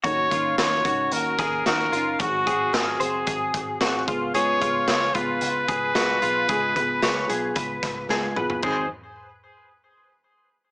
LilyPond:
<<
  \new Staff \with { instrumentName = "Trumpet" } { \time 4/4 \key gis \dorian \tempo 4 = 112 cis''4 cis''4 ais'4 ais'4 | fis'4 gis'2 r4 | cis''4 cis''8 b'2~ b'8~ | b'2. r4 |
gis'8 r2. r8 | }
  \new Staff \with { instrumentName = "Clean electric guitar" } { \time 4/4 \key gis \dorian fis'8 eis'4 fis'4 gis'8 fis'8 eis'8 | fis'8 gis'8 ais'8 bis'8 gis'4 fis'8 eis'8 | gis'8 eis'4 eis'4 gis'8 fis'8 eis'8 | gis'8 b'8 cis''8 gis'8 b'4 gis'8 b'8 |
bis'8 r2. r8 | }
  \new Staff \with { instrumentName = "Steel-string acoustic guitar" } { \time 4/4 \key gis \dorian <dis fis cis' dis' ais'>8 <cis' dis' ais'>8 <fis cis' dis' ais'>8 <cis' dis' ais'>4. <fis cis' dis' ais'>8 <cis' dis' ais'>8 | <gis, dis fis bis fis' gis'>8 <fis bis fis' gis'>8 <fis bis fis' gis'>8 <fis bis fis' gis'>4. <fis bis fis' gis'>8 <b eis' gis'>8 | <cis gis b eis' gis'>8 <b gis'>8 <gis b eis' gis'>8 <b eis' gis'>4. <gis b eis' gis'>8 <b eis' gis'>8 | <cis gis b eis' gis'>8 <b eis' gis'>8 <gis b eis' gis'>8 <b eis' gis'>4. <gis b eis' gis'>8 <b eis' gis'>8 |
<gis, dis fis bis dis' gis'>8 r2. r8 | }
  \new Staff \with { instrumentName = "Picked electric bass" } { \clef bass \time 4/4 \key gis \dorian dis,8 dis,8 dis,8 cis,8 dis,8 dis,8 dis,8 fis,,8 | gis,,8 gis,,8 gis,,8 fis,,8 gis,,8 gis,,8 gis,,8 cis,8~ | cis,8 cis,8 cis,8 cis,8 cis,8 cis,8 cis,8 b,,8 | cis,8 cis,8 cis,8 b,,8 cis,8 cis,8 cis,8 fis,,8 |
gis,,8 r2. r8 | }
  \new DrumStaff \with { instrumentName = "Drums" } \drummode { \time 4/4 <hh bd>8 <hh bd>8 <hh sn>8 <hh bd>8 hh8 <hh bd sn>8 <hh sn>8 hh8 | <hh bd>8 <hh bd>8 <hh sn>8 hh8 <hh bd>8 <hh bd>8 <hh sn>8 <hh bd>8 | hh8 <hh bd>8 <hh sn>8 <hh bd>8 hh8 <hh bd>8 <hh sn>8 hh8 | <hh bd>8 <hh bd>8 <hh sn>8 hh8 <hh bd>8 <hh bd sn>8 sn8 toml16 tomfh16 |
<cymc bd>4 r4 r4 r4 | }
>>